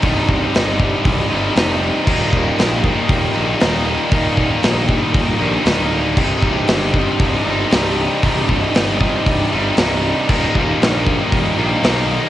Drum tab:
CC |--------|x-------|--------|x-------|
HH |o-o-o-o-|--o-o-o-|o-o-o-o-|--o-o-o-|
SD |--o---o-|--o---o-|--o---o-|--o---o-|
BD |oo-oo---|oo-oo---|oo-oo---|oo-oo---|

CC |--------|x-------|
HH |o-o-o-o-|--o-o-o-|
SD |--o---o-|--o---o-|
BD |oo-oo---|oo-oo---|